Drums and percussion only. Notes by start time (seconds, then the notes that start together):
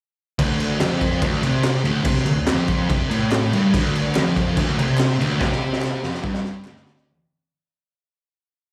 0.39 kick, crash
0.60 crash
0.80 snare, clap, crash
1.01 kick, crash
1.22 kick, crash
1.43 crash
1.63 snare, clap, crash
1.74 snare
1.85 crash
2.05 kick, crash
2.16 snare
2.26 crash
2.47 snare, clap, crash
2.68 kick, crash
2.90 kick, crash
3.11 crash
3.32 snare, clap, crash
3.53 crash
3.74 kick, crash
3.95 crash
4.15 snare, clap, crash
4.36 kick, crash
4.57 kick, crash
4.79 crash
4.98 snare, clap, crash
5.21 crash
5.41 kick, snare
5.52 snare
5.73 snare
5.82 snare, clap
6.03 snare
6.14 snare
6.24 kick
6.34 snare
6.45 snare
6.65 snare, clap
6.76 snare
6.86 snare
6.97 snare